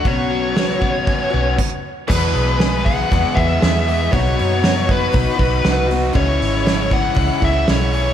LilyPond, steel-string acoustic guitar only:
\new Staff \with { instrumentName = "Steel-string acoustic guitar" } { \time 4/4 \key e \major \tempo 4 = 118 <b, fis b cis' fis'>4 <fis b cis' fis'>8 <b cis' fis'>4 <b cis' fis'>8 r4 | <e, b, e gis b gis'>4 <e gis b gis'>4 <e, b, e gis b gis'>8 <e gis b gis'>4 <e gis b gis'>8 | <b, fis b dis' fis'>4 <fis b dis' fis'>8 <b dis' fis'>8 <b, fis b dis' fis'>8 <b dis' fis'>4 <b dis' fis'>8 | <cis e gis cis' e'>4 <e gis cis' e'>8 <gis cis' e'>8 <cis e gis cis' e'>8 <gis cis' e'>4. | }